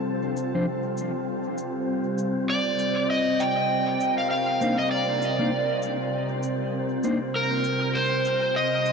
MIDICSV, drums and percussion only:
0, 0, Header, 1, 2, 480
1, 0, Start_track
1, 0, Tempo, 606061
1, 55, Time_signature, 4, 2, 24, 8
1, 7068, End_track
2, 0, Start_track
2, 0, Title_t, "Drums"
2, 292, Note_on_c, 9, 69, 46
2, 371, Note_off_c, 9, 69, 0
2, 772, Note_on_c, 9, 69, 44
2, 851, Note_off_c, 9, 69, 0
2, 1251, Note_on_c, 9, 69, 43
2, 1330, Note_off_c, 9, 69, 0
2, 1729, Note_on_c, 9, 69, 45
2, 1808, Note_off_c, 9, 69, 0
2, 2210, Note_on_c, 9, 69, 46
2, 2289, Note_off_c, 9, 69, 0
2, 2693, Note_on_c, 9, 69, 43
2, 2772, Note_off_c, 9, 69, 0
2, 3172, Note_on_c, 9, 69, 42
2, 3251, Note_off_c, 9, 69, 0
2, 3655, Note_on_c, 9, 69, 44
2, 3735, Note_off_c, 9, 69, 0
2, 4134, Note_on_c, 9, 69, 45
2, 4214, Note_off_c, 9, 69, 0
2, 4614, Note_on_c, 9, 69, 42
2, 4693, Note_off_c, 9, 69, 0
2, 5092, Note_on_c, 9, 69, 44
2, 5171, Note_off_c, 9, 69, 0
2, 5572, Note_on_c, 9, 69, 43
2, 5651, Note_off_c, 9, 69, 0
2, 6053, Note_on_c, 9, 69, 47
2, 6132, Note_off_c, 9, 69, 0
2, 6533, Note_on_c, 9, 69, 46
2, 6612, Note_off_c, 9, 69, 0
2, 7015, Note_on_c, 9, 69, 45
2, 7068, Note_off_c, 9, 69, 0
2, 7068, End_track
0, 0, End_of_file